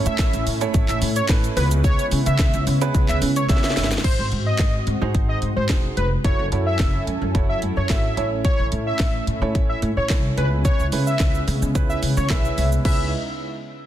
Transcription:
Already playing: A3 C#4 E4 A4 C#5
0.06 A2 E5, closed hi-hat, shaker
0.19 A1, kick, snare, clap, closed hi-hat, shaker
0.33 A1, closed hi-hat, shaker
0.47 A2, open hi-hat, shaker
0.61 A3 C#4 E4 A4 C#5, closed hi-hat, shaker
0.74 A1, kick, closed hi-hat, shaker
0.89 A1 E5, clap, closed hi-hat, shaker
1.02 A2, open hi-hat, shaker
1.16 C#5, closed hi-hat, shaker
1.29 A2 A3 C#4 E4 A4 B4, kick, snare, clap, closed hi-hat, shaker
1.44 closed hi-hat, shaker
1.57 C#2 C#3 G#3 B3 C#4 E4 G#4 B4, open hi-hat, shaker
1.71 closed hi-hat, shaker
1.84 C#5, kick, closed hi-hat, shaker
1.99 closed hi-hat, shaker
2.11 C#3, open hi-hat, shaker
2.26 C#3 E5, closed hi-hat, shaker
2.39 C#2, kick, snare, clap, closed hi-hat, shaker
2.54 C#2, closed hi-hat, shaker
2.67 C#3, open hi-hat, shaker
2.81 B3 C#4 E4 G#4 B4, closed hi-hat, shaker
2.95 C#2, kick, closed hi-hat, shaker
3.09 C#2 E5, clap, closed hi-hat, shaker
3.22 C#3, open hi-hat, shaker
3.36 C#5, closed hi-hat, shaker
3.49 C#3 B3 C#4 E4 G#4 C#5 E5, kick, snare, closed hi-hat, shaker
3.57 snare
3.64 snare, closed hi-hat, shaker
3.70 snare
3.77 G1, snare, open hi-hat, shaker
3.84 snare
3.92 snare, closed hi-hat, shaker
3.98 snare
4.04 G#1 G#3 C4 F#4 C5, kick, closed hi-hat, crash
4.19 G#1
4.32 G#2, closed hi-hat
4.46 D#5
4.59 G#1, kick, snare, clap, closed hi-hat
4.87 G#2, closed hi-hat
5.01 G#2 D#4 F#4 G#4 C5
5.15 G#1, kick, closed hi-hat
5.29 D#5
5.42 G#2, closed hi-hat
5.56 G#2 C5
5.69 E1 D#4 F#4 G#4 C5, kick, snare, clap, closed hi-hat
5.97 F1 B4, closed hi-hat
6.24 F#1 F#3 C#4 E4 F#4 A4 C#5 G#5, kick, closed hi-hat
6.39 F#1
6.52 F#2 E4 F#4 A4 C#5, closed hi-hat
6.66 E5
6.79 F#1, kick, snare, clap, closed hi-hat
7.07 F#2, closed hi-hat
7.22 F#2
7.35 F#1 E4 F#4 A4 C#5, kick, closed hi-hat
7.49 E5
7.62 F#2, closed hi-hat
7.77 F#2 C#5
7.90 G#1 E4 F#4 A4 C#5 E5, kick, snare, clap, closed hi-hat
8.17 A1 A3 C#4 E4 A4 C#5, closed hi-hat
8.45 C#5, kick, closed hi-hat
8.59 A1
8.72 A2, closed hi-hat
8.87 E5
8.99 A1, kick, snare, clap, closed hi-hat
9.27 A2, closed hi-hat
9.42 A2 C#4 E4 A4 C#5
9.55 A1, kick, closed hi-hat
9.69 E5
9.82 A2, closed hi-hat
9.97 A2 C#5
10.10 C2 C#4 E4 A4 C#5, kick, snare, clap, closed hi-hat
10.37 C#2 C#3 G#3 B3 C#4 E4 G#4 B4, closed hi-hat
10.65 C#5, kick, closed hi-hat, shaker
10.79 C#2, shaker
10.92 C#3 C#4 E4 G#4 B4, open hi-hat, shaker
11.07 E5, shaker
11.20 C#2, kick, snare, clap, closed hi-hat, shaker
11.35 shaker
11.48 C#3, open hi-hat, shaker
11.62 C#3, shaker
11.75 C#2 C#4 E4 G#4 B4, kick, closed hi-hat, shaker
11.89 E5, shaker
12.03 C#3, open hi-hat, shaker
12.17 C#3 C#5, shaker
12.30 B1 C#4 E4 G#4 B4 E5, kick, snare, clap, closed hi-hat, shaker
12.45 shaker
12.58 C2, open hi-hat, shaker
12.72 shaker
12.85 C#2 C#3 G#3 B3 C#4 D#4 E4 G#4 B4 E5, kick, crash

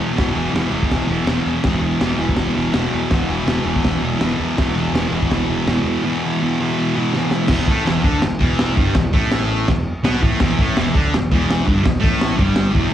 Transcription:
Already playing: E2 B2 E3
0.00 E2
0.14 E2 B2 E3
0.18 E1, kick, snare, crash
0.33 E1 B2 E3
0.51 E1 E2 B2 E3
0.56 snare, crash
0.72 E1 B2 E3
0.83 kick
0.91 E1, kick, snare, crash
1.07 E1 B2 E3
1.26 E1 E2 B2 E3, snare, crash
1.46 E2
1.64 E1 E2 B2 E3, kick, snare, crash
1.81 E1 B2 E3
2.00 E1 E2 B2 E3, snare, crash
2.19 E1 B2 E3
2.29 kick
2.37 E1, kick, snare, crash
2.54 E1 B2 E3
2.73 E1 E2 B2 E3, snare, crash
2.94 E2
3.10 E1 E2 B2 E3, kick, snare, crash
3.28 E1 B2 E3
3.46 E1 E2 B2 E3, snare, crash
3.65 E1 B2 E3
3.76 kick
3.85 E1, kick, snare, crash
4.02 E1 B2 E3
4.19 E1 E2 B2 E3, snare, crash
4.40 E2
4.58 E1 E2 B2 E3, kick, snare, crash
4.76 E1 B2 E3
4.93 E1 E2 B2 E3, snare, crash
5.12 E1 B2 E3
5.23 kick
5.31 E1, kick, snare, crash
5.48 E1 E3
5.54 B2
5.67 E1 E2 B2 E3, snare, crash
5.85 E2
6.04 E2 B2 E3
6.24 B2 E3
6.42 E2 B2 E3
6.60 B2 E3
6.96 B2 E3
7.13 E2 B2 E3, snare
7.31 snare
7.48 E1 E2 E3, kick, snare, crash
7.67 A1 A2 A3, kick
7.85 E1 E2 E3, snare, crash
8.03 D2 D3 D4, kick
8.20 E1 E2, snare, crash
8.39 E1 E2 E3, kick
8.59 snare, crash
8.77 G1 G2 G3, kick
8.95 E1 E2, kick, snare, crash
9.13 A1 A2 A3, kick
9.32 snare, crash
9.68 E1 E2, kick, snare, crash
10.03 B1 B2 B3, snare, crash
10.22 A1 A2 A3, kick
10.40 E1 E2 E3, kick, snare, crash
10.59 A1 A2 A3, kick
10.76 E1 E2 E3, snare, crash
10.95 D2 D3 D4, kick
11.13 E1 E2, snare, crash
11.32 E1 E2 E3, kick
11.51 snare, crash
11.65 G1 G2 G3, kick
11.84 E1 E2, kick, snare, crash
12.00 A1 A2 A3, kick
12.21 snare, crash
12.36 G1 G2 G3, kick
12.56 snare, crash
12.72 E1 E2 E3, kick

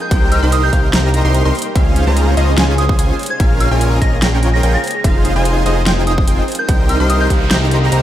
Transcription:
Already playing: C3 G3 A#3 D#4
0.02 A#4 G6
0.11 C2 D#4 G4 A#4 C5 G5, kick, closed hi-hat
0.22 G4
0.32 D#4 F6, closed hi-hat
0.43 C2 D#4 G4 A#4 C5 C6
0.52 C5 D#6, closed hi-hat
0.63 D#5 G6
0.73 C2 D#4 G4 A#4 C5 F5, kick, closed hi-hat
0.84 A#4
0.93 C2 D#4 G4 A#4 C5 A#5, snare, closed hi-hat
1.04 G4
1.14 D#4, closed hi-hat
1.25 C2 D#4 G4 A#4 C5 C6
1.34 C5, closed hi-hat
1.45 C2 D#4 G4 A#4 C5 D#5 C6
1.55 C5, closed hi-hat, open hi-hat
1.62 closed hi-hat
1.66 A#4
1.75 C#2 G#3 C#4 F4 G#4 C5 F5, kick, closed hi-hat
1.86 G#4
1.96 F4, closed hi-hat
2.07 C#2 C#4 F4 G#4 C5 A#5
2.17 C#5, closed hi-hat
2.28 F5
2.37 C#2 C#4 F4 G#4 C5 C#5 D#5, closed hi-hat
2.48 C5
2.58 C#2 C#4 F4 G#4 C5 G#5, snare, closed hi-hat
2.69 G#4
2.78 F4 D#6, closed hi-hat
2.89 F4 D#6, kick
2.99 C#2 C#4 F4 G#4 C5 C#5 G#5, closed hi-hat
3.10 F5
3.19 C#5, closed hi-hat, open hi-hat
3.26 C5, closed hi-hat
3.30 G#6
3.40 A#1 C#4 F4 G#4 A#4 F5, kick, closed hi-hat
3.51 G#4
3.60 F4 F6, closed hi-hat
3.71 A#1 C#4 F4 G#4 A#4 G#5
3.81 C#5, closed hi-hat
3.92 F5
4.02 A#1 C#4 F4 G#4 A#4 C#5 D#5 A#6, kick, closed hi-hat
4.12 A#4
4.22 A#1 C#4 F4 G#4 A#4 G5, snare, closed hi-hat
4.33 G#4
4.43 F4, closed hi-hat
4.54 F4 A#6
4.63 A#1 C#4 F4 G#4 A#4 C#5 G5, closed hi-hat
4.74 F5 A#6
4.84 D#4 C5, closed hi-hat, open hi-hat
4.91 closed hi-hat
4.95 G#4
5.04 F1 D#4 F4 G#4 C5 F5, kick, closed hi-hat
5.15 F4
5.25 D#4, closed hi-hat
5.36 F1 D#4 F4 G#4 C5 G#5
5.45 C5, closed hi-hat
5.56 D#5
5.66 F1 D#4 F4 G#4 C5 D#5, closed hi-hat
5.77 G#4
5.86 F1 D#4 F4 G#4 C5 G5, snare, closed hi-hat
5.97 F4
6.07 D#4 D#6, closed hi-hat
6.18 D#4 D#6, kick
6.27 F1 D#4 F4 G#4 C5 G5, closed hi-hat
6.38 D#5
6.48 C3 G3 A#3 C5, closed hi-hat, open hi-hat
6.55 closed hi-hat
6.59 A#4 G6
6.69 C2 D#4 G4 A#4 C5 G5, kick, closed hi-hat, noise sweep
6.80 G4
6.89 D#4 F6, closed hi-hat
7.00 C2 D#4 G4 A#4 C5 C6
7.10 C5 D#6, closed hi-hat
7.21 D#5 G6
7.30 C2 G4 A#4 C5 F5, kick, closed hi-hat
7.41 A#4
7.51 C2 D#4 G4 A#4 C5 A#5, snare, closed hi-hat
7.62 G4
7.71 D#4, closed hi-hat
7.82 D#4
7.92 C2 D#4 G4 A#4 C5 A#5, closed hi-hat

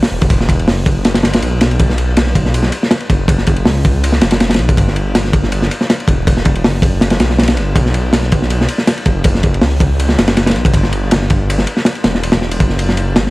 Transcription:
0.03 snare, open hi-hat
0.12 E1
0.21 kick, ride
0.30 kick, ride
0.41 snare
0.49 kick, ride
0.59 ride
0.68 F#1, snare, open hi-hat
0.86 kick, ride
1.05 snare, ride
1.14 snare, ride
1.23 G1, snare, ride
1.33 snare, ride
1.42 B1, ride
1.61 snare, ride
1.71 ride
1.79 B1, kick, ride
1.90 snare
1.98 ride
2.17 snare, ride
2.26 snare
2.35 kick, ride
2.45 snare
2.54 ride
2.63 snare
2.72 ride
2.83 snare
2.91 snare, ride
3.00 ride
3.10 F#1, kick, ride
3.28 kick, ride
3.38 snare
3.47 kick, ride
3.56 ride
3.65 C#2, snare, open hi-hat
3.85 kick, ride
4.04 ride
4.12 snare
4.21 F#1, snare, ride
4.31 snare, ride
4.40 snare, ride
4.49 snare, ride
4.54 snare, ride
4.59 B1, ride
4.69 kick, ride
4.77 G1, kick, ride
4.88 snare
4.96 ride
5.15 snare, ride
5.24 snare
5.33 kick, ride
5.43 snare
5.52 ride
5.62 snare
5.71 ride
5.81 snare
5.90 snare, ride
6.00 ride
6.08 E1, kick, ride
6.27 kick, ride
6.37 snare
6.45 kick, ride
6.55 ride
6.64 F#1, snare, open hi-hat
6.82 kick, ride
7.01 snare, ride
7.10 snare, ride
7.20 B1, snare, ride
7.30 snare
7.39 snare, ride
7.43 snare, ride
7.48 snare, ride
7.57 G1, ride
7.76 B1, kick, ride
7.86 snare
7.94 ride
8.13 snare, ride
8.23 snare
8.32 kick, ride
8.42 snare
8.50 ride
8.61 snare
8.68 ride
8.78 snare
8.87 snare, ride
8.98 ride
9.06 F#1, kick, ride
9.24 kick, ride
9.35 snare
9.43 kick, ride
9.54 ride
9.61 C#2, snare, open hi-hat
9.80 kick, ride
9.99 ride
10.09 snare
10.18 F#1, snare, ride
10.28 snare, ride
10.37 snare, ride
10.46 snare, ride
10.50 snare, ride
10.55 B1, ride
10.65 kick, ride
10.74 G1, kick, ride
10.83 snare
10.93 ride
11.11 snare, ride
11.22 snare
11.30 kick, ride
11.50 ride
11.58 snare
11.67 ride
11.77 snare
11.85 snare, ride
11.95 ride
12.04 E1, snare, ride
12.15 snare
12.23 ride
12.32 snare, ride
12.41 snare
12.51 ride
12.60 F#1, kick, ride
12.69 snare
12.79 ride
12.89 snare
12.97 ride
13.16 G1, snare, ride
13.27 snare

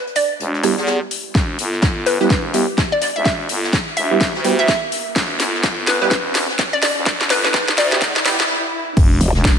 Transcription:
0.07 closed hi-hat
0.15 D5, closed hi-hat, open hi-hat
0.40 E1, closed hi-hat
0.54 snare
0.63 G3 B3 E4 G4, cross-stick, closed hi-hat, open hi-hat
0.78 E2, snare
0.86 snare, closed hi-hat
1.11 closed hi-hat, open hi-hat
1.35 E1, kick, snare, closed hi-hat, riser
1.59 G1, closed hi-hat, open hi-hat
1.73 snare
1.82 G1, kick, snare, closed hi-hat
2.06 B4, closed hi-hat, open hi-hat
2.21 E1 G3 B3 E4 G4 B4, snare
2.30 kick, snare, closed hi-hat
2.54 G3 B3 E4 G4, closed hi-hat, open hi-hat
2.77 kick, snare, closed hi-hat
2.92 D5
3.02 D5, snare, closed hi-hat, open hi-hat
3.16 E1 E5
3.25 E5, kick, snare, closed hi-hat
3.40 closed hi-hat
3.49 G1, closed hi-hat, open hi-hat
3.64 snare
3.72 kick, snare, closed hi-hat
3.88 closed hi-hat
3.97 E1 E5, closed hi-hat, open hi-hat
4.11 G3 B3 E4 G4
4.20 kick, snare, closed hi-hat
4.35 D2, snare
4.44 G3 B3 E4 G4, closed hi-hat, open hi-hat
4.59 E5, snare
4.68 kick, snare, closed hi-hat
4.92 closed hi-hat, open hi-hat
5.16 E1, kick, snare, closed hi-hat
5.40 G1, snare, closed hi-hat, open hi-hat
5.55 snare
5.63 G1, kick, snare, closed hi-hat
5.87 B4, snare, closed hi-hat, open hi-hat
6.02 E1 G3 B3 E4 G4 B4, snare
6.11 kick, snare, closed hi-hat
6.34 snare, closed hi-hat, open hi-hat
6.49 snare
6.59 kick, snare, closed hi-hat
6.73 D5
6.82 D5, snare, closed hi-hat, open hi-hat
6.97 E1
7.06 kick, snare, closed hi-hat
7.21 snare, closed hi-hat
7.30 G1 B4, snare, closed hi-hat, open hi-hat
7.44 B4, snare
7.54 F#1, kick, snare, closed hi-hat
7.68 snare
7.77 D2 D5, snare, closed hi-hat, open hi-hat
7.92 G3 B3 E4 G4, snare
8.02 E2, kick, snare, closed hi-hat, swell
8.16 snare
8.25 G3 B3 E4 G4, snare, closed hi-hat, open hi-hat
8.40 snare
8.97 E1, kick, closed hi-hat, crash, sub drop
9.21 E1, closed hi-hat, open hi-hat
9.35 E1, snare
9.45 kick, cross-stick, snare, closed hi-hat

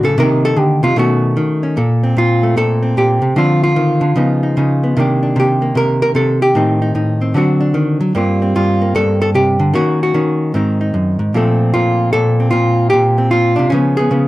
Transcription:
Already playing: A2 F#3 B3
0.03 C#3 A4
0.18 C3 D#3 A#3 D#4 A#4
0.45 A4
0.56 D3 G4
0.83 C3 F4
0.96 B2 D#3 A3 C#4 F#4
1.37 D#3
1.63 C#4
1.77 A#2 A4
2.03 C4
2.17 A#2 F4
2.43 A3
2.57 A#2 A4
2.83 C4
2.97 A#2 G4
3.22 C3
3.36 D3 F3 C4 D4 F4
3.63 F4
3.76 D#3
4.01 D3
4.16 C#3 F3 B3 D#4
4.43 D#4
4.57 C#3 D#4
4.84 B3
4.97 C3 D#3 A#3 D4 G4
5.23 D4
5.36 C3 G4
5.62 A#3
5.75 C3 A#4
6.02 A#4
6.15 C3 A4
6.42 G4
6.55 A2 D#3 C4 D#4
6.82 D#4
6.95 A2 D#4
7.22 C4
7.34 D3 F#3 C4 D4 F#4
7.61 D4
7.74 D#3
8.01 F#3
8.15 G2 G3 A#3 C4 F4
8.42 C4
8.56 G2 F4
8.82 A#3
8.95 G2 A4
9.22 A4
9.35 C3 G4
9.59 D3
9.74 D#3 A#3 C#4 F#4
10.03 F#4
10.14 D#3 C#4
10.54 G#2 D#3 C4 D#4
10.81 D#4
10.94 F#2
11.19 G#2
11.34 A#2 F3 A3 C4 A4
11.74 A#2 F4
12.13 A#2 A4
12.40 C4
12.51 A#2 F4
12.90 A#2 G4
13.18 C4
13.31 A#2 F4
13.56 C3 D4
13.70 C#3 F3 B3 C#4
13.97 B3 G#4
14.11 C#3 B3

